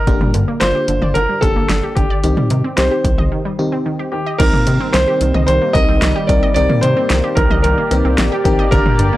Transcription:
Already playing: A#4
0.07 G1 D3 A#3 D4 G4, kick, closed hi-hat
0.21 G3, mid tom
0.34 G2 D3, closed hi-hat
0.48 A#3
0.60 G1 D3 A#3 D4 F4 C5, snare, closed hi-hat
0.75 G4
0.88 G1 D3, closed hi-hat
1.02 G1 D5, mid tom
1.14 G1 D3 A#4, closed hi-hat
1.29 G3
1.41 G1 D3 A#3 D4 G4 A4, kick, closed hi-hat
1.56 G1 A#3
1.69 G1 D3, snare, closed hi-hat
1.83 G4
1.95 G1 D3 G4, kick, closed hi-hat
2.10 D5
2.24 C2 D#3 C4 D#4 G4, closed hi-hat
2.37 G3, mid tom
2.50 C3 D#3, closed hi-hat
2.64 C4
2.76 C2 D#3 C4 D#4 G4 C5, snare, closed hi-hat
2.91 G4
3.04 C2 D#3, kick, closed hi-hat
3.18 C2 D#5, mid tom
3.32 D#3
3.45 G3
3.59 D#3 C4 D#4 G4
3.72 C4
3.86 D#3
3.99 G4
4.12 D#3 G4
4.26 D#5
4.38 C2 D#3 G3 A#3 C4 D#4 G4 A#4, kick, closed hi-hat, crash
4.53 A#3, mid tom
4.67 C3 D#3, closed hi-hat
4.80 C4
4.93 C2 D#3 C5, snare, closed hi-hat
5.08 G4
5.21 C2 D#3, closed hi-hat
5.34 C2 D#5, mid tom
5.47 C2 D#3 C5, closed hi-hat
5.62 A#3
5.73 C2 D#3 C4 D#4 A#4 D#5, kick, closed hi-hat
5.89 C2 C4
6.02 C2 D#3, snare, closed hi-hat
6.16 G4
6.27 C2 D#3 C4 D#4 A#4 D5, kick, closed hi-hat
6.43 D#5
6.54 C2 D#3 C4 D#4 A#4 D5, closed hi-hat
6.70 A#3, mid tom
6.81 C3 D#3 C5, closed hi-hat
6.97 C4
7.10 C2 D#3, snare, closed hi-hat
7.24 G4
7.35 C2 D#3 A#4, kick, closed hi-hat, cowbell
7.50 C2 D#5, mid tom
7.62 C2 D#3 A#4, closed hi-hat
7.78 A#3
7.91 C2 D#3 C4 D#4 A#4, closed hi-hat, cowbell
8.05 C2 C4
8.18 A#1 D#3, snare, closed hi-hat
8.32 G4
8.44 A#1 D#3 C4 D#4 G4 A#4, kick, closed hi-hat
8.59 D#5
8.71 G1 D3 D4 G4 A#4, kick, closed hi-hat
8.86 G3, mid tom
8.99 G2 D3, closed hi-hat
9.13 A#3

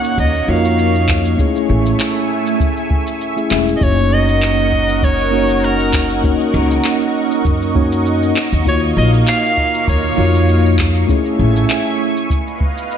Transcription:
Already playing: A#3 C#4 D#4 F#4 C#5 D#5 F#5 C#6
0.04 shaker
0.18 D#2 D#5, kick, shaker
0.35 shaker
0.47 F2 A#3 D#4 F4 F#4 C#5 F5
0.65 shaker
0.79 shaker
0.95 shaker
1.09 kick, clap
1.25 shaker
1.37 A3 C#4 E4 G#4 C#5 E5 G#5, kick, shaker
1.56 shaker
1.69 A1
1.86 shaker
2.00 clap, shaker
2.16 shaker
2.47 shaker
2.60 kick, shaker
2.77 shaker
2.91 kick
3.07 shaker
3.21 shaker
3.36 A3 C#4 E4 G#4 E5, shaker
3.50 E1 A3 C#4 E4 G#4 E5, clap
3.68 shaker
3.77 A#3 C#4 D#5
3.81 F#1 D#4 F#4 A#4 C#5 D#5 F#5 C#6, kick, shaker
3.98 shaker
4.13 D#5
4.29 shaker
4.42 clap, shaker
4.59 shaker
4.72 kick
4.89 shaker
5.03 C#5, kick, shaker
5.20 shaker
5.31 A#3 C#4 D#4 F#4 C#5
5.50 shaker
5.64 A#4, shaker
5.80 shaker
5.93 kick, clap
6.11 shaker
6.22 A#3 C#4 D#4 F#4 C#5, kick, shaker
6.41 shaker
6.54 C#2
6.71 shaker
6.85 clap, shaker
7.01 shaker
7.31 shaker
7.45 F#2, kick, shaker
7.62 shaker
7.74 A#3 C#4 D#4 F#4 C#5, kick
7.92 shaker
8.06 shaker
8.23 shaker
8.36 A#3 F5, clap
8.53 D#2, shaker
8.65 A#3 D#4 F4 F#4 C#5, kick, shaker
8.84 shaker
8.97 A#1 D#5
9.14 shaker
9.28 F5, clap, shaker
9.44 shaker
9.57 kick
9.74 shaker
9.88 D#2 C#5, kick, shaker
10.05 shaker
10.16 F2 A#3 D#4 F4 F#4 C#5
10.35 shaker
10.49 shaker
10.66 shaker
10.79 kick, clap
10.96 shaker
11.07 A3 C#4 E4 G#4 C#5 E5 G#5 C#6, kick, shaker
11.26 shaker
11.39 A1
11.56 shaker
11.70 clap, shaker
11.87 shaker
12.17 shaker
12.30 B4 D#5 F5, kick, shaker
12.48 shaker
12.61 kick
12.78 shaker
12.92 shaker

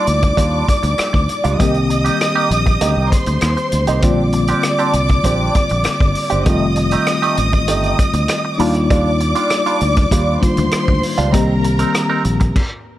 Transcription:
Already playing: G3 A#3 D4 D#4 F4 D5 D6
0.07 D2, muted clean electric guitar stroke, closed hi-hat
0.22 muted clean electric guitar stroke, kick, closed hi-hat
0.37 D#2 G3 D4 F4, kick, closed hi-hat
0.68 kick, closed hi-hat
0.83 D2, muted clean electric guitar stroke, closed hi-hat
0.98 muted clean electric guitar stroke, muted fingered electric bass stroke, cross-stick, closed hi-hat
1.13 D2, muted clean electric guitar stroke, kick, cross-stick
1.29 closed hi-hat
1.44 C#2 G3 D4 F4, closed hi-hat
1.59 C2 D#3 G3 A#3 C4 D#4 G4 D#5 D#6, kick, closed hi-hat
1.74 closed hi-hat
1.90 muted clean electric guitar stroke, closed hi-hat
2.05 A#3 D#4 G4, closed hi-hat
2.20 muted clean electric guitar stroke, cross-stick, closed hi-hat
2.35 A#3 D#4 G4
2.51 A#1, closed hi-hat
2.66 muted clean electric guitar stroke, kick, closed hi-hat
2.81 D2 A#3 D#4 G4, closed hi-hat
2.97 C2
3.11 C5 C6, muted clean electric guitar stroke, kick, closed hi-hat
3.26 D2, muted clean electric guitar stroke, closed hi-hat
3.41 D#2, muted clean electric guitar stroke, cross-stick, closed hi-hat
3.57 muted clean electric guitar stroke, closed hi-hat
3.72 D2, closed hi-hat
3.87 C2 A#3 D#4 G4, closed hi-hat
4.01 A#1 D3 G3 A#3 C4 D4 F4 G4 D5 D6, kick, closed hi-hat
4.33 muted clean electric guitar stroke, closed hi-hat
4.48 C4 D4 G4, closed hi-hat
4.63 cross-stick, closed hi-hat
4.79 C4 D4 G4, closed hi-hat
4.93 C2, closed hi-hat
5.09 muted clean electric guitar stroke, kick, closed hi-hat
5.24 A#1 C4 D4 G4, kick, closed hi-hat
5.55 muted clean electric guitar stroke, kick, closed hi-hat
5.69 A#1, muted clean electric guitar stroke, closed hi-hat
5.84 muted clean electric guitar stroke, cross-stick, closed hi-hat
6.00 G1, muted clean electric guitar stroke, kick
6.15 open hi-hat
6.30 F#1 C4 D4 G4, closed hi-hat
6.45 F1 D#3 G3 A3 C4 D#4 F4 G4 D#5 D#6, kick, closed hi-hat
6.76 muted clean electric guitar stroke, closed hi-hat
6.91 A3 D#4 G4, closed hi-hat
7.07 cross-stick, closed hi-hat
7.22 A3 D#4 G4, closed hi-hat
7.37 A1, muted clean electric guitar stroke, closed hi-hat
7.53 muted clean electric guitar stroke, kick, closed hi-hat
7.68 G1 A3 D#4 G4, closed hi-hat
7.83 closed hi-hat
7.99 muted clean electric guitar stroke, kick, closed hi-hat
8.13 D2, muted clean electric guitar stroke, closed hi-hat
8.28 muted clean electric guitar stroke, cross-stick, closed hi-hat
8.45 muted clean electric guitar stroke
8.58 D#2 G3 A#3 D4 D#4 F4 D5 D6, open hi-hat
8.75 muted clean electric guitar stroke, closed hi-hat
8.90 G3 D4 F4, kick, closed hi-hat
9.20 muted clean electric guitar stroke, closed hi-hat
9.35 G3 D4 F4, closed hi-hat
9.50 muted clean electric guitar stroke, cross-stick, closed hi-hat
9.66 G3 D4 F4, closed hi-hat
9.81 D2, muted clean electric guitar stroke, closed hi-hat
9.96 muted clean electric guitar stroke, kick, cross-stick, closed hi-hat
10.11 D#2 G3 D4 F4, kick, closed hi-hat
10.42 D#3 G3 A#3 D4 F4 C5 C6, muted clean electric guitar stroke, kick, closed hi-hat
10.57 D2, muted clean electric guitar stroke, closed hi-hat
10.71 muted clean electric guitar stroke, muted fingered electric bass stroke, cross-stick, closed hi-hat
10.88 D2, muted clean electric guitar stroke, kick
11.03 open hi-hat
11.18 C#2 G3 D4 F4, closed hi-hat
11.32 C2 D#3 G3 A#3 C4 D#4 G4 A#4 A#5, kick, closed hi-hat
11.64 muted clean electric guitar stroke, closed hi-hat
11.79 C4 D#4 A#4, closed hi-hat
11.94 muted clean electric guitar stroke, cross-stick, closed hi-hat
12.10 C4 D#4 A#4
12.24 A#1, muted clean electric guitar stroke, closed hi-hat
12.40 muted clean electric guitar stroke, kick, closed hi-hat
12.56 kick, crash

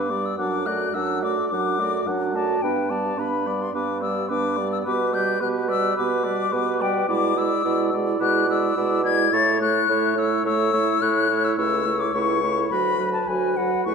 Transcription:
Already playing: G2 B3 D4 B4 D6
0.09 G3 B3 D5
0.25 E6
0.38 F#2 F#3 D4 F#5 D6
0.66 A3 F#4 D5 F#6
0.94 F#2 F#3 D4 F#5 E6
1.23 A3 F#4 D5 D6
1.49 F#2 F#3 D4 F#5 D6
1.79 A3 F#4 D5
2.06 F#2 F#3 D4 F#5
2.34 A3 F#4 D5 A5
2.62 G2 B3 D4 B4 G5
2.90 G3 B3 D5 A5
3.18 G2 B3 D4 B4 B5
3.46 G3 B3 D5
3.62 C6
3.74 G2 B3 D4 B4 D6
4.02 G3 B3 D5 E6
4.29 G2 B3 D4 B4 D6
4.56 G3 B3 D5
4.72 E6
4.84 B2 B3 G4 B4 D6
5.13 G3 B4 D5 G6
5.41 B2 B3 G4 B4 F#6
5.69 G3 B4 D5 E6
5.96 B2 B3 G4 B4 D6
6.24 G3 B4 D5
6.52 B2 B3 G4 B4
6.81 G3 B4 D5 G5
7.08 B2 G#3 E4 D5 D6
7.36 G#3 E4 D5 E6
7.64 B2 G#3 E4 D5
7.92 G#3 E4 D5
8.19 B2 G#3 E4 D5 F#6
8.47 G#3 E4 D5 E6
8.76 B2 G#3 E4 D5
9.04 G#3 E4 D5 G#6
9.32 A2 A3 E4 C#5 A6
9.60 A3 E4 C#5 F#6
9.89 A2 A3 E4 C#5
10.16 A3 E4 C#5 E6
10.45 A2 A3 E4 C#5 E6
10.73 A3 E4 C#5
11.02 A2 A3 E4 C#5 F#6
11.30 A3 E4 C#5
11.44 E6
11.57 C#2 A3 E4 C#5 E6
11.86 A3 E4 C#5
12.00 D6
12.14 C#2 A3 E4 C#5 C#6
12.42 A3 E4 C#5
12.70 D2 F#3 F#4 B4 B5
12.99 F#3 F#4 B4
13.13 A5
13.27 D2 F#3 F#4 B4 G#5
13.56 F#3 F#4 B4 F#5
13.85 E2 A3 E4 B4 C#6

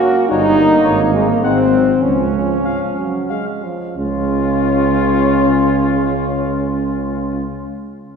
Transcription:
Already playing: A#3 F#4
0.29 G1 G3 D#4 C#5
0.58 A#3
0.84 G#1 C#5
1.14 G#3
1.29 A#3
1.42 G#1 G#3 C4 F#5
1.72 F#3
2.02 C#2 F3 C#4
2.64 F3 F5
2.98 F#3
3.29 G#3 F5
3.64 F3
3.97 C#2 C#3 C#4 F4 C#5

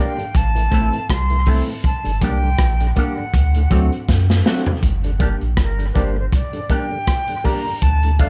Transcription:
Already playing: A#3 D4 G4 A#4
0.00 D4 G4 A#4 G5
0.18 G2 D3, closed hi-hat
0.35 A1 A5, kick, closed hi-hat
0.55 A2 E3, closed hi-hat
0.71 A1 A3 C4 E4 A4, kick, closed hi-hat
0.93 A2 E3 E4 A4, closed hi-hat
1.10 C2 C6, kick, cross-stick, closed hi-hat
1.30 A2 E3, closed hi-hat
1.46 A3 C4 E4 A4, kick, open hi-hat
1.66 A2 E3
1.84 A5, kick, closed hi-hat
2.04 G1 G2 D3, closed hi-hat
2.21 C2 G3 A#3 D4 G4 A#4 G5, kick, closed hi-hat
2.43 G2 D3
2.59 A#1, kick, cross-stick, closed hi-hat
2.80 G2 D3, closed hi-hat
2.96 G3 A#3 D4 G4 A#4 F#5, kick, closed hi-hat
3.18 G2 D3
3.34 D2, kick, closed hi-hat
3.54 D2 A2, closed hi-hat
3.70 D2 F#3 A3 C4 D4 F#4 A4, kick, closed hi-hat
3.92 F#4 A4, closed hi-hat
4.09 F#2, kick, snare
4.29 D2 A2, snare
4.45 F#3 A3 C4 D4 F#4 A4, snare
4.66 D2 A2, floor tom
4.83 G1, kick, closed hi-hat
5.04 G2 D3, closed hi-hat
5.19 G3 A#3 D4 G4 A#4, kick, closed hi-hat
5.41 A#1, closed hi-hat
5.57 G1, kick, cross-stick, closed hi-hat
5.62 A#4
5.79 G2 D3, closed hi-hat
5.92 G1 G3 A#3 D4 G4 A#4 B4, kick, closed hi-hat
5.97 D4 G4 C5
6.16 G2 D3 C5
6.32 D5, kick, closed hi-hat
6.53 G2 D3, closed hi-hat
6.70 G3 A#3 D4 G4 A#4 G5, kick, closed hi-hat
6.91 G2 D3 G4 A#4
7.07 kick, cross-stick, closed hi-hat
7.28 G2 D3, closed hi-hat
7.44 G3 A#3 D4 G4 A#4 A#5, kick, open hi-hat
7.67 G2 D3
7.82 D2 A5, kick, closed hi-hat
8.03 D2 A2, closed hi-hat
8.19 F3 A3 D4 F4 A4 D5 F5, kick, closed hi-hat

